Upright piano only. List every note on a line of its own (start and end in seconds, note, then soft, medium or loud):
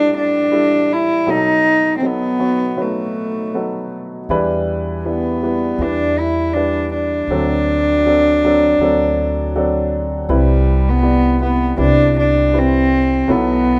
0.00 1.24 A1 soft
0.00 1.24 A2 soft
0.00 0.52 G3 medium
0.00 0.52 D4 medium
0.00 0.52 E4 medium
0.00 0.53 A4 medium
0.52 1.16 G3 medium
0.52 1.16 D4 soft
0.52 1.16 E4 medium
0.52 1.17 A4 medium
1.27 4.25 B1 soft
1.27 4.25 B2 soft
1.27 1.91 F#3 medium
1.27 1.92 B3 medium
1.27 1.92 D#4 medium
1.27 1.92 A4 medium
2.02 2.35 F#3 soft
2.02 2.34 B3 soft
2.02 2.34 D#4 soft
2.02 2.34 A4 medium
2.39 2.72 F#3 soft
2.39 2.72 B3 soft
2.39 2.72 D#4 soft
2.39 2.72 F#4 medium
2.77 3.42 F#3 medium
2.77 3.42 B3 soft
2.77 3.42 D#4 soft
2.77 3.42 B4 medium
3.54 4.19 F#3 medium
3.54 4.18 B3 medium
3.54 4.18 D#4 soft
3.54 4.18 A4 medium
4.30 7.26 E2 medium
4.30 7.26 E3 medium
4.30 4.94 G3 medium
4.30 4.94 D4 medium
4.30 4.94 E4 medium
4.30 4.94 B4 medium
5.05 5.37 G3 soft
5.05 5.37 D4 soft
5.05 5.37 E4 soft
5.05 5.37 B4 medium
5.43 5.74 G3 soft
5.43 5.75 D4 soft
5.43 5.75 E4 soft
5.43 5.75 B4 medium
5.81 6.44 G3 medium
5.81 6.44 D4 soft
5.81 6.44 E4 soft
5.81 6.44 B4 medium
6.55 7.19 G3 medium
6.55 7.19 D4 soft
6.55 7.19 E4 medium
6.55 7.19 B4 medium
7.31 10.26 D2 soft
7.31 10.26 D3 soft
7.31 7.94 F#3 medium
7.31 7.94 C4 medium
7.31 7.94 D4 medium
7.31 7.94 A4 medium
8.06 8.37 F#3 medium
8.06 8.37 C4 medium
8.06 8.37 D4 medium
8.06 8.37 A4 medium
8.44 8.75 F#3 medium
8.44 8.75 C4 medium
8.44 8.75 D4 medium
8.44 8.75 A4 medium
8.81 9.44 F#3 medium
8.81 9.44 C4 medium
8.81 9.44 D4 medium
8.81 9.44 A4 medium
9.55 10.19 F#3 medium
9.55 10.18 C4 medium
9.55 10.19 D4 medium
9.55 10.19 A4 medium
10.29 13.25 C2 soft
10.29 13.24 C3 soft
10.29 10.93 G3 medium
10.29 10.92 C4 medium
10.29 10.93 E4 medium
10.29 10.93 B4 medium
11.03 11.35 G3 medium
11.03 11.35 B3 soft
11.03 11.35 E4 soft
11.03 11.35 D5 medium
11.41 11.73 G3 medium
11.41 11.73 B3 soft
11.41 11.73 E4 soft
11.41 11.73 B4 medium
11.77 12.41 G3 medium
11.77 12.42 C4 medium
11.77 12.42 E4 medium
11.77 12.42 B4 medium
12.53 13.17 G3 medium
12.53 13.17 C4 medium
12.53 13.17 E4 medium
12.53 13.17 B4 medium
13.28 13.79 B1 soft
13.28 13.79 B2 soft
13.28 13.79 F#3 medium
13.28 13.79 B3 medium
13.28 13.79 E4 medium
13.28 13.79 A4 medium